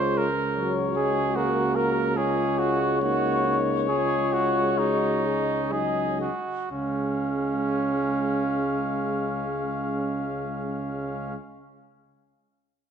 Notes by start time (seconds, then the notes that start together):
Already playing: C#2 G#3 F4 C5 C#5
0.18 A#4
0.56 F#3 F#4 C#5
0.96 G#3 G#4
1.36 A#3 F#4 A#4
1.76 A#4
2.17 G#3 F4 G#4 C#5
2.59 F#4
3.02 A#3 D#4 F#4
3.47 D#4
3.89 G#3 F4 G#4
4.33 F#4
4.78 D#4 F#4
5.26 G#4
5.72 F#3 D#4 G#4 D#5
6.21 F#4
6.71 C#2 G#3 C#4 F5